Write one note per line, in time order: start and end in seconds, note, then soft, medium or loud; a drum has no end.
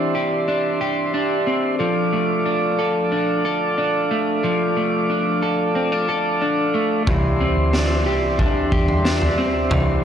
0.00 1.79 E3 medium
0.00 1.45 C4 medium
0.00 0.48 D4 medium
0.00 0.14 G4 medium
0.00 1.76 G4 medium
0.00 10.04 D5 medium
0.00 1.76 E5 medium
0.00 1.76 C6 medium
0.15 0.80 G4 medium
0.48 1.13 D4 medium
0.81 1.87 G4 medium
1.14 2.45 D4 medium
1.47 1.86 C4 medium
1.79 4.43 F3 medium
1.79 7.03 A4 medium
1.79 7.03 F5 medium
1.79 7.03 D6 medium
2.13 4.10 A3 medium
2.46 3.11 D4 medium
2.79 3.44 A4 medium
3.12 3.78 D4 medium
3.45 5.41 A4 medium
3.78 5.09 D4 medium
4.11 4.75 A3 medium
4.44 7.07 F3 medium
4.77 6.73 A3 medium
5.10 5.75 D4 medium
5.42 6.07 A4 medium
5.75 5.92 C4 medium
5.92 6.40 D4 soft
6.09 7.14 A4 medium
6.42 7.43 D4 medium
6.74 7.14 A3 soft
7.07 7.54 C2 medium
7.07 9.69 E3 medium
7.07 10.04 G4 medium
7.07 10.04 E5 medium
7.07 10.04 C6 medium
7.07 kick medium
7.07 floor tom loud
7.40 9.37 C4 medium
7.57 8.07 D2 medium
7.73 8.39 D4 medium
7.73 snare medium
8.06 8.69 C2 medium
8.06 8.71 G4 medium
8.39 9.04 D4 medium
8.39 kick medium
8.39 floor tom medium
8.72 9.35 E2 medium
8.72 10.04 G4 medium
8.72 kick medium
8.88 floor tom medium
9.05 10.04 D4 medium
9.05 snare loud
9.22 floor tom medium
9.38 10.03 C4 medium
9.70 10.04 C2 medium
9.70 10.04 E3 medium
9.70 floor tom loud